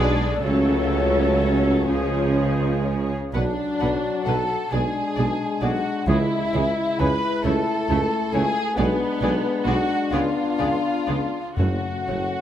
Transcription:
0.00 0.26 B1 medium
0.00 0.43 B1 medium
0.00 0.43 B2 medium
0.00 0.26 G#3 medium
0.00 0.43 G#3 medium
0.00 0.26 D4 medium
0.00 0.43 D4 medium
0.00 0.43 G#4 medium
0.00 0.43 D5 medium
0.00 0.44 D5 medium
0.42 1.86 C#2 medium
0.42 1.86 C#3 medium
0.42 1.86 F#3 medium
0.42 1.86 A3 medium
0.42 2.87 C#4 medium
0.42 1.86 F#4 medium
0.42 1.86 A4 medium
0.42 1.86 C#5 medium
0.42 2.87 C#5 medium
1.89 3.11 C#2 medium
1.89 3.12 C#2 medium
1.89 3.11 C#3 medium
1.89 3.14 F3 medium
1.89 3.01 G#3 soft
1.89 3.01 F4 medium
1.89 3.11 G#4 soft
1.89 3.11 C#5 medium
3.34 3.53 B1 medium
3.34 3.43 B1 medium
3.34 3.42 B2 medium
3.34 4.68 F#3 medium
3.34 3.42 F#3 soft
3.34 4.23 D4 medium
3.34 4.68 F#4 medium
3.34 3.42 B4 medium
3.34 4.28 D5 medium
3.34 3.42 F#5 soft
3.80 3.99 B1 soft
3.80 3.89 B1 medium
3.80 3.89 B2 medium
3.80 3.89 F#3 soft
3.80 3.89 B4 soft
3.80 3.88 F#5 soft
4.25 4.45 B1 soft
4.25 4.35 B1 soft
4.25 4.35 B2 medium
4.25 4.36 F#3 soft
4.25 4.72 A4 medium
4.25 4.36 B4 soft
4.25 4.33 F#5 soft
4.25 4.74 A5 medium
4.72 4.90 B1 medium
4.72 4.80 B1 medium
4.72 4.81 B2 medium
4.72 4.80 G#3 soft
4.72 7.46 G#3 medium
4.72 6.08 D4 medium
4.72 5.62 G#4 medium
4.72 4.81 G#4 soft
4.72 4.80 D5 soft
4.72 5.61 G#5 medium
5.16 5.25 B1 soft
5.16 5.35 B1 medium
5.16 5.26 B2 soft
5.16 5.26 G#3 soft
5.16 5.26 G#4 soft
5.16 5.24 D5 soft
5.61 5.80 B1 soft
5.61 5.70 B1 soft
5.61 5.71 B2 soft
5.61 5.70 G#3 soft
5.61 6.08 F#4 medium
5.61 5.70 G#4 soft
5.61 5.69 D5 soft
5.61 6.09 F#5 medium
6.07 6.15 C#2 medium
6.07 6.26 C#2 medium
6.07 7.41 C#3 medium
6.07 6.16 C#3 medium
6.07 6.16 G#3 medium
6.07 8.78 E4 medium
6.07 6.98 E4 medium
6.07 6.16 G#4 medium
6.07 6.16 C#5 medium
6.07 7.01 E5 medium
6.53 6.72 C#2 soft
6.53 6.62 C#2 medium
6.53 6.62 C#3 medium
6.53 6.63 G#3 soft
6.53 6.63 G#4 soft
6.53 6.61 C#5 soft
6.99 7.17 C#2 medium
6.99 7.08 C#2 medium
6.99 7.07 C#3 medium
6.99 7.09 G#3 soft
6.99 7.09 G#4 soft
6.99 7.45 B4 medium
6.99 7.07 C#5 soft
6.99 7.44 B5 medium
7.44 7.62 C#2 medium
7.44 7.53 C#2 medium
7.44 7.53 C#3 medium
7.44 8.77 A3 medium
7.44 7.53 A3 medium
7.44 7.54 E4 medium
7.44 8.34 A4 medium
7.44 7.52 C#5 medium
7.44 8.32 A5 medium
7.89 8.07 C#2 medium
7.89 7.98 C#2 medium
7.89 7.98 C#3 medium
7.89 7.98 A3 medium
7.89 7.98 E4 medium
7.89 7.98 C#5 soft
8.33 8.41 C#2 medium
8.33 8.51 C#2 medium
8.33 8.42 C#3 medium
8.33 8.42 A3 medium
8.33 8.42 E4 medium
8.33 8.78 G#4 medium
8.33 8.42 C#5 medium
8.33 8.79 G#5 medium
8.77 8.85 B1 medium
8.77 8.95 B1 medium
8.77 8.86 B2 medium
8.77 10.12 G#3 medium
8.77 8.86 G#3 medium
8.77 9.65 B3 medium
8.77 11.41 D4 medium
8.77 8.86 G#4 medium
8.77 9.65 B4 medium
8.77 8.85 D5 medium
9.21 9.29 B1 medium
9.21 9.39 B1 medium
9.21 9.30 B2 medium
9.21 9.30 G#3 medium
9.21 9.31 G#4 medium
9.21 9.30 D5 medium
9.66 9.84 B1 medium
9.66 9.74 B1 medium
9.66 9.75 B2 medium
9.66 9.74 G#3 soft
9.66 10.12 F#4 medium
9.66 9.74 G#4 medium
9.66 9.75 D5 medium
9.66 10.12 F#5 medium
10.11 10.31 C#2 medium
10.11 10.20 C#2 medium
10.11 10.20 C#3 medium
10.11 11.41 B3 medium
10.11 10.20 B3 medium
10.11 11.58 F4 medium
10.11 10.20 G#4 medium
10.11 10.20 D5 medium
10.11 11.26 F5 medium
10.59 10.78 C#2 medium
10.59 10.67 C#2 medium
10.59 10.68 C#3 soft
10.59 10.67 B3 soft
10.59 10.67 G#4 soft
10.59 10.67 D5 soft
11.06 11.28 C#2 soft
11.06 11.16 C#2 soft
11.06 11.16 C#3 soft
11.06 11.16 B3 soft
11.06 11.16 G#4 soft
11.06 11.14 D5 soft
11.57 11.78 F#1 soft
11.57 11.66 F#1 soft
11.57 12.41 F#2 medium
11.57 11.67 F#2 soft
11.57 12.41 A3 soft
11.57 11.66 A3 soft
11.57 12.41 C#4 soft
11.57 11.66 F#4 soft
11.57 12.41 F#4 medium
11.57 11.66 C#5 soft
11.57 12.41 F#5 medium
12.08 12.28 F#1 soft
12.08 12.16 F#1 soft
12.08 12.17 F#2 soft
12.08 12.17 A3 soft
12.08 12.17 F#4 soft
12.08 12.16 C#5 soft

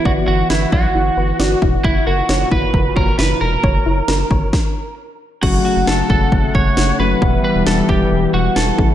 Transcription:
0.00 4.49 E3 medium
0.00 1.80 B3 medium
0.05 0.21 G1 loud
0.05 0.11 F#4 medium
0.05 0.20 D5 loud
0.05 kick loud
0.28 0.43 G1 loud
0.28 0.42 E4 medium
0.28 0.50 F#4 medium
0.50 0.66 G1 medium
0.50 0.72 E4 medium
0.50 0.65 B4 medium
0.50 snare loud
0.72 0.88 B1 medium
0.72 1.58 F#4 medium
0.72 0.87 D5 medium
0.72 kick medium
0.95 1.11 G1 loud
0.95 1.10 E4 medium
1.17 1.33 G1 medium
1.17 1.32 B4 medium
1.40 1.55 G1 loud
1.40 1.54 D5 loud
1.40 snare loud
1.62 1.78 E1 medium
1.62 1.77 E4 medium
1.62 kick medium
1.84 2.00 F#1 loud
1.84 4.50 A#2 medium
1.84 1.99 E4 loud
1.84 2.07 E4 medium
1.84 kick loud
2.07 2.22 F#1 medium
2.07 2.49 F#4 medium
2.07 2.21 A#4 medium
2.29 2.45 F#1 medium
2.29 2.44 C#5 loud
2.29 snare loud
2.51 2.67 G1 medium
2.51 2.66 E4 medium
2.51 2.96 B4 loud
2.51 kick medium
2.74 2.90 F#1 loud
2.74 2.89 A#4 loud
2.74 kick medium
2.96 3.12 F#1 loud
2.96 3.18 A#4 medium
2.96 3.11 C#5 medium
2.96 kick medium
3.19 3.34 F#1 loud
3.19 3.33 E4 medium
3.19 3.40 B4 medium
3.19 snare loud
3.41 3.57 E1 medium
3.41 4.94 A#4 medium
3.41 3.56 A#4 medium
3.64 3.79 F#1 loud
3.64 3.78 C#5 loud
3.64 kick loud
3.86 4.02 F#1 medium
3.86 4.01 E4 medium
4.08 4.24 F#1 loud
4.08 4.23 A#4 medium
4.08 snare loud
4.31 4.46 G1 medium
4.31 4.45 C#5 medium
4.31 kick medium
4.53 kick loud
4.53 snare medium
5.43 5.58 F#1 loud
5.43 7.20 C#3 medium
5.43 6.96 F#3 medium
5.43 7.20 A3 medium
5.43 6.96 A3 medium
5.43 6.96 C#4 medium
5.43 6.96 F#4 medium
5.43 5.64 F#4 medium
5.43 8.75 F#5 medium
5.43 kick loud
5.43 crash medium
5.65 5.88 F#4 medium
5.76 5.84 F#1 loud
5.87 6.03 F#1 loud
5.87 6.09 A4 medium
5.87 snare loud
6.10 6.25 F#1 loud
6.10 6.52 A4 medium
6.10 kick medium
6.32 6.48 F#1 loud
6.32 kick medium
6.55 6.70 F#1 loud
6.55 6.96 C#5 medium
6.55 kick medium
6.77 6.93 F#1 loud
6.77 snare loud
6.99 7.15 F#1 loud
6.99 7.22 F#3 soft
6.99 7.22 A3 soft
6.99 7.22 C#4 soft
6.99 7.22 F#4 medium
6.99 7.43 B4 loud
7.22 7.38 E1 loud
7.22 8.77 E3 medium
7.22 8.77 G3 medium
7.22 8.75 G3 medium
7.22 8.75 B3 medium
7.22 8.75 E4 medium
7.22 8.75 F#5 medium
7.22 kick loud
7.44 7.65 B4 medium
7.55 7.63 E1 medium
7.67 7.82 E1 loud
7.67 7.90 A4 medium
7.67 snare loud
7.89 8.05 E1 loud
7.89 8.31 G4 medium
7.89 kick medium
8.11 8.27 E1 loud
8.34 8.49 E1 loud
8.34 8.57 F#4 medium
8.56 8.72 E1 loud
8.56 8.87 A4 medium
8.56 snare loud
8.78 8.95 A1 loud
8.78 8.95 C#3 medium
8.78 8.95 A3 medium
8.78 8.95 C#4 medium
8.78 8.95 E4 medium
8.78 8.95 A4 medium
8.78 kick medium

